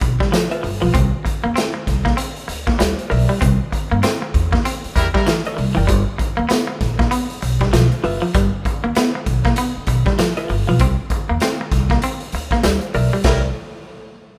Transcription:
0.01 B1, muted clean electric guitar stroke, kick, closed hi-hat
0.20 G3, kick, snare
0.32 F3, snare, closed hi-hat, tambourine
0.51 F4 B4 E5, closed hi-hat
0.63 G1, muted clean electric guitar stroke, open hi-hat
0.81 B1 F3 F4 B4 F5
0.94 C2 C4, kick, closed hi-hat
1.25 muted clean electric guitar stroke, kick, closed hi-hat
1.44 E2 A#3
1.56 C4, snare, closed hi-hat, tambourine
1.74 muted clean electric guitar stroke
1.87 C2, kick, snare, closed hi-hat
2.05 A#3, kick, snare
2.17 C4, closed hi-hat
2.36 closed hi-hat
2.48 D2, muted clean electric guitar stroke, closed hi-hat
2.67 A#3, kick, snare
2.79 D2 G3, snare, closed hi-hat, tambourine
2.99 closed hi-hat
3.10 B1 A#4 D5 E5, muted clean electric guitar stroke, open hi-hat
3.29 G3
3.41 C2 C4, kick, closed hi-hat
3.72 muted clean electric guitar stroke, kick, closed hi-hat
3.91 G2 A#3
4.03 C4, snare, closed hi-hat, tambourine
4.22 muted clean electric guitar stroke
4.34 E2, kick, closed hi-hat
4.52 A#3, kick, snare
4.65 C4, closed hi-hat
4.84 muted upright bass stroke, closed hi-hat
4.96 E2 G3 E4 A#4, muted clean electric guitar stroke, kick, closed hi-hat
5.14 G3 E4 A#4, kick, snare
5.26 E3, snare, closed hi-hat, tambourine
5.45 A#4 D5 E5, closed hi-hat
5.57 C2, muted clean electric guitar stroke, open hi-hat
5.75 F#1 E3 A#4 D5 G5
5.87 G1 G3, kick, closed hi-hat
6.18 muted clean electric guitar stroke, kick, closed hi-hat
6.37 D2 A#3
6.49 B3, snare, closed hi-hat, tambourine
6.67 muted clean electric guitar stroke
6.81 A#1, kick, snare, closed hi-hat
6.99 A#3, kick, snare
7.11 B3, closed hi-hat
7.30 closed hi-hat
7.42 B1, muted clean electric guitar stroke, closed hi-hat
7.61 G3, kick, snare
7.73 B1 F3, snare, closed hi-hat, tambourine
7.92 closed hi-hat
8.04 F#1 F4 B4 E5, muted clean electric guitar stroke, open hi-hat
8.22 F3
8.34 G1 G3, kick, closed hi-hat
8.65 muted clean electric guitar stroke, kick, closed hi-hat
8.84 D2 A#3
8.95 B3, snare, closed hi-hat, tambourine
9.15 muted clean electric guitar stroke
9.26 B1, kick, closed hi-hat
9.45 A#3, kick, snare
9.56 B3, closed hi-hat
9.77 muted upright bass stroke
9.87 B1, muted clean electric guitar stroke, kick, closed hi-hat
10.06 G3, kick, snare
10.19 F3, snare, closed hi-hat, tambourine
10.37 F4 B4 E5, closed hi-hat
10.49 G1, muted clean electric guitar stroke, open hi-hat
10.67 B1 F3 F4 B4 F5
10.79 C2 C4, kick, closed hi-hat
11.10 muted clean electric guitar stroke, kick, closed hi-hat
11.29 E2 A#3
11.40 C4, snare, closed hi-hat, tambourine
11.61 muted clean electric guitar stroke
11.72 C2, kick, snare, closed hi-hat
11.90 A#3, kick, snare
12.02 C4, closed hi-hat
12.20 closed hi-hat
12.32 D2, muted clean electric guitar stroke, closed hi-hat
12.51 A#3, kick, snare
12.63 D2 G3, snare, closed hi-hat, tambourine
12.81 closed hi-hat
12.94 B1 A#4 D5 E5, muted clean electric guitar stroke, open hi-hat
13.13 G3
13.24 C2 G3 E4 A#4 D5 E5, kick, snare, crash

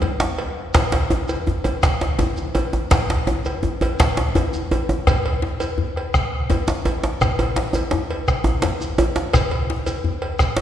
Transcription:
Already playing: F#3
0.02 bombo rim, cowbell, djembe slap, djembe bass
0.20 djembe slap, djembe tone
0.38 bombo rim, cowbell
0.74 bombo rim, bombo low, cowbell, djembe slap, djembe bass, shekere
0.92 cowbell, djembe slap
1.10 bombo rim, djembe slap, djembe tone
1.28 bombo rim, cowbell, djembe tone, shekere
1.47 djembe slap, djembe tone, djembe bass
1.64 bombo rim, cowbell, djembe tone
1.83 bombo rim, bombo low, cowbell, djembe slap, shekere
2.01 djembe slap
2.19 cowbell, djembe slap, djembe tone, djembe bass, shekere
2.37 djembe tone, shekere
2.55 cowbell, djembe tone
2.73 djembe slap, djembe tone
2.91 bombo rim, bombo low, cowbell, djembe slap, djembe bass, shekere
3.10 djembe slap
3.27 bombo rim, djembe slap, djembe tone
3.45 bombo rim, cowbell, djembe tone, shekere
3.63 djembe slap, djembe tone, djembe bass
3.81 bombo rim, cowbell, djembe tone
3.99 bombo rim, bombo low, cowbell, djembe slap, shekere
4.17 bombo rim, djembe slap
4.35 cowbell, djembe slap, djembe tone, djembe bass, shekere
4.53 djembe tone, shekere
4.71 cowbell, djembe tone
4.89 djembe slap, djembe tone
5.07 bombo rim, bombo low, cowbell, djembe slap, djembe bass, shekere
5.26 cowbell
5.42 bombo rim, djembe slap
5.60 bombo rim, cowbell, djembe tone, shekere
5.78 djembe slap, djembe bass
5.96 bombo rim, cowbell
6.14 bombo rim, bombo low, cowbell, shekere
6.33 bombo rim
6.50 cowbell, djembe slap, djembe tone, djembe bass, shekere
6.68 djembe slap, djembe tone, shekere
6.85 cowbell, djembe tone
7.04 djembe slap
7.21 bombo rim, bombo low, cowbell, djembe slap, djembe bass, shekere
7.39 cowbell, djembe tone
7.56 bombo rim, djembe slap
7.73 djembe tone, shekere
7.75 bombo rim, cowbell, djembe tone
7.91 djembe slap, djembe bass
8.10 cowbell, djembe slap
8.28 bombo rim, bombo low, cowbell, djembe slap, shekere
8.44 bombo rim, djembe slap, djembe tone
8.62 cowbell, djembe slap, djembe bass, shekere
8.81 djembe bass, shekere
8.98 cowbell, djembe slap, djembe tone
9.16 djembe slap, shekere
9.33 bombo rim, bombo low, cowbell, djembe slap, djembe bass, shekere
9.51 cowbell
9.70 bombo rim, djembe slap
9.86 bombo rim, cowbell, djembe tone, shekere
10.04 djembe slap, djembe bass
10.22 bombo rim, cowbell
10.39 bombo rim, bombo low, cowbell, shekere
10.57 bombo rim, djembe slap

